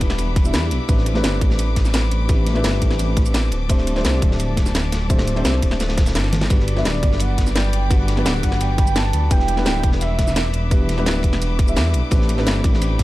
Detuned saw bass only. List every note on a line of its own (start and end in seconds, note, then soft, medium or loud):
0.01 0.17 E1 medium
0.19 0.55 E1 medium
0.54 0.73 E2 loud
0.71 0.79 B1 medium
0.89 1.23 A1 loud
1.24 1.40 G1 medium
1.41 1.75 A1 medium
1.77 2.10 A1 medium
2.12 2.63 A1 loud
2.64 2.80 G1 loud
2.82 2.98 A1 medium
2.99 3.51 A1 medium
3.52 3.68 D1 medium
3.70 4.03 D1 loud
4.05 4.20 C2 medium
4.22 4.56 D1 medium
4.57 4.91 D1 medium
4.92 5.44 D1 medium
5.45 5.61 C2 loud
5.62 5.78 D1 medium
5.80 6.17 D1 medium
6.15 6.49 G1 loud
6.50 6.84 G1 loud
6.85 7.01 D1 medium
7.03 7.37 G1 medium
7.38 7.72 G1 medium
7.73 8.24 G1 loud
8.26 8.41 D1 loud
8.43 8.59 G1 medium
8.61 9.12 G1 medium
9.13 9.29 D2 medium
9.31 9.65 E1 loud
9.66 9.82 D1 loud
9.84 10.17 E1 medium
10.19 10.52 E1 medium
10.54 11.05 E1 loud
11.06 11.22 D1 loud
11.24 11.40 E1 medium
11.41 11.78 E1 medium
11.76 11.95 E2 medium
11.94 12.02 B1 medium
12.12 12.45 A1 loud
12.47 12.63 G1 loud
12.64 12.98 A1 medium
12.99 13.03 A1 medium